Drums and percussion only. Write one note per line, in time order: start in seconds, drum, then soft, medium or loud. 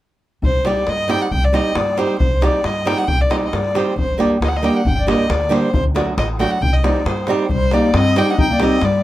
0.43 davul low medium
0.65 davul high soft
0.87 davul high medium
1.09 davul high medium
1.31 davul low medium
1.54 davul high medium
1.75 davul high medium
1.98 davul high medium
2.20 davul low medium
2.42 davul high medium
2.64 davul high medium
2.87 davul high medium
3.08 davul low medium
3.22 davul high soft
3.31 davul high medium
3.43 davul high soft
3.53 davul high medium
3.65 davul high soft
3.75 davul high medium
3.98 davul low medium
4.20 davul high medium
4.42 davul high medium
4.64 davul high soft
4.86 davul low medium
5.08 davul high medium
5.30 davul high medium
5.52 davul high medium
5.74 davul low medium
5.96 davul high medium
6.18 davul high medium
6.40 davul high medium
6.63 davul low medium
6.74 davul high soft
6.84 davul high medium
6.96 davul high soft
7.06 davul high medium
7.17 davul high soft
7.27 davul high medium
7.39 davul high soft
7.49 davul low medium
7.71 davul high medium
7.94 davul high medium
8.16 davul high medium
8.38 davul low medium
8.60 davul high medium
8.81 davul high medium